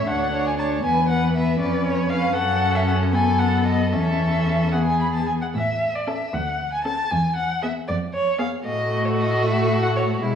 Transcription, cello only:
0.07 D2
0.84 E2
1.61 F2
2.36 F#2
3.92 E2
5.54 A2
6.33 D2
7.12 E2
7.89 F2
8.65 A2
10.23 B2

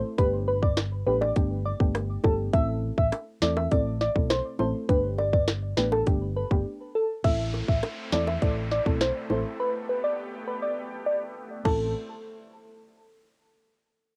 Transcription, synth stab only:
Already playing: A3 C4 E4 A4
0.18 A3 B3 D4 G4
1.06 A3 B3 D4 G4
1.36 A3 B3 D4 G4
1.80 A3 B3 D4 G4
2.24 A3 B3 D4 G4
2.53 A3 C4 E4 A4
3.42 A3 C4 E4 A4
3.71 A3 C4 E4 A4
4.15 A3 C4 E4 A4
4.59 A3 C4 E4 A4
4.89 A3 B3 D4 G4
5.77 A3 B3 D4 G4
6.06 A3 B3 D4 G4
6.51 A3 B3 D4 G4
7.24 A3 C4 E4 A4
8.12 A3 C4 E4 A4
8.42 A3 C4 E4 A4
8.86 A3 C4 E4 A4
9.30 A3 C4 E4 A4
11.65 A3 C4 E4 A4

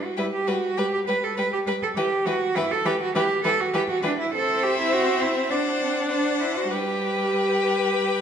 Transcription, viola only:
0.18 G3
0.48 G3
0.78 G3
1.08 G3
1.37 G3
1.67 G3
1.96 E3
2.26 E3
2.55 E3
2.85 E3
3.15 E3
3.45 E3
3.74 E3
4.03 E3
4.33 C4
5.50 D4
6.71 G3

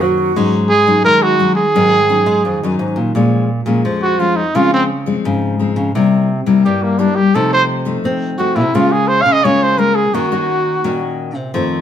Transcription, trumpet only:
0.69 G#4
1.05 A#4
1.23 F#4
1.55 G#4
4.02 F#4
4.20 F4
4.36 D#4
4.56 F4
4.74 C4
6.65 G4
6.83 A#3
6.99 D4
7.16 G4
7.35 A4
7.53 C5
8.38 F#4
8.56 E4
8.75 F4
8.92 G#4
9.08 C5
9.22 F5
9.33 D#5
9.44 C#5
9.63 C5
9.79 A#4
9.95 G#4
10.14 F#4

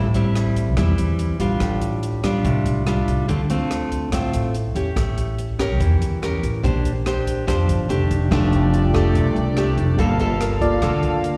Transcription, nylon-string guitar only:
Already playing: A2
0.15 G3 C4 E4
0.77 E3 G3 C4 E4
1.40 G3 D4 F4
1.61 A2
2.23 G3 D4 F4
2.45 A2
2.86 G3 D4 F4
3.28 D3 A3 C4 F4
3.50 A3 C4 F4
4.12 A2 A3 C4 F4
4.76 C#4 G4
4.96 A3
5.59 C#4 G4 A#4
5.80 E3
6.22 C#4 G4 A#4
6.63 A#3 D4 G4 C5
7.06 D4 G4 C5
7.47 F3 D4 G4 C5
7.89 A3 D4 G4
8.31 F3 A3 D4 G4
8.94 A3 D4 G4
9.15 C3
9.57 A3 D4 G4
9.99 G3 A#3 F4 A4
10.20 A#3 F4 A4
10.82 D3 A#3 F4 A4

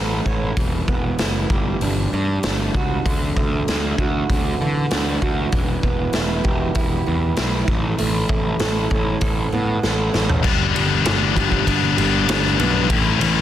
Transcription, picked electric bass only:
Already playing: A1
0.26 A1
0.57 E1
0.88 E1
1.19 F#1
1.50 G1
1.81 G1
2.13 G2
2.45 G1
2.74 C#2
3.06 D2
3.37 D2
3.69 D2
3.98 D2
4.30 D2
4.61 D3
4.92 D2
5.22 D2
5.53 E1
5.84 E1
6.16 E1
6.45 E1
6.75 E1
7.07 E2
7.38 B1
7.68 A1
8.01 A1
8.30 A1
8.62 A1
8.91 A1
9.22 A1
9.53 A2
9.84 A1
10.15 A1
10.44 G1
10.76 G1
11.06 G1
11.37 G1
11.67 G1
11.97 G1
12.29 G1
12.60 B1
12.90 A1
13.21 A1

